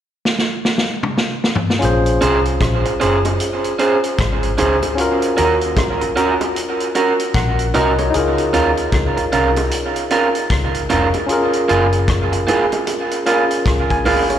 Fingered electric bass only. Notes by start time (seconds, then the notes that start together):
1.83 A#1
2.23 C2
2.61 A#1
3.03 F#1
4.19 G#1
4.61 C#2
5.39 D#2
7.35 A#1
7.76 C2
8.15 C#2
8.55 D#2
8.93 C#2
9.33 C2
10.51 C#2
10.91 F1
11.71 F#1
13.66 C#2
14.07 G#1